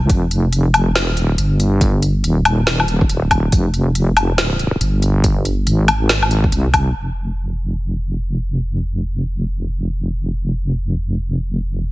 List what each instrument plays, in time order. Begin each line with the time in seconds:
0.10 wobble bass F1, kick, closed hi-hat
0.31 closed hi-hat
0.53 closed hi-hat
0.74 closed hi-hat, low woodblock
0.96 snare, closed hi-hat
1.00 wobble bass E1
1.17 closed hi-hat
1.25 wobble bass D#1
1.38 wobble bass G1, closed hi-hat
1.60 closed hi-hat
1.81 kick, closed hi-hat
2.02 closed hi-hat
2.24 wobble bass D#1, closed hi-hat
2.45 closed hi-hat, low woodblock
2.67 snare, closed hi-hat
2.80 low woodblock
2.88 closed hi-hat
3.01 kick
3.10 closed hi-hat
3.31 kick, closed hi-hat, low woodblock
3.52 wobble bass F1, kick, closed hi-hat
3.74 closed hi-hat
3.95 closed hi-hat
4.17 closed hi-hat, low woodblock
4.38 snare, closed hi-hat
4.59 closed hi-hat
4.81 wobble bass G1, closed hi-hat
5.02 closed hi-hat
5.24 kick, closed hi-hat
5.45 closed hi-hat
5.67 wobble bass G#1, closed hi-hat
5.88 closed hi-hat, low woodblock
6.09 snare, closed hi-hat
6.23 low woodblock
6.31 closed hi-hat
6.44 kick
6.52 wobble bass C2, closed hi-hat
6.74 kick, closed hi-hat, low woodblock
6.95 wobble bass F1